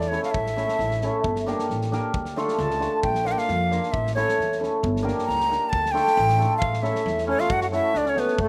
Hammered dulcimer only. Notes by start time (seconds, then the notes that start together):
0.11 A3 C#4 E4 A4
0.56 A3 C#4 E4 A4
1.03 A3 C#4 E4 A4
1.46 A#3 D4 G4 A#4
1.92 A#3 D4 G4 A#4
2.36 A3 D4 F4 A4
2.79 A3 D4 F4 A4
3.24 A#3 D4 F4 A#4
3.71 A#3 D4 F4 A#4
4.16 A3 C#4 E4 A4
4.60 A3 C#4 E4 A4
5.03 A#3 D4 G4 A#4
5.48 A#3 D4 G4 A#4
5.93 A3 D4 F4 A4
6.37 A3 D4 F4 A4
6.82 A3 C#4 E4 A4
7.26 A3 C#4 E4 A4
7.71 A3 C#4 F#4 A4
8.14 A3 C#4 F#4 A4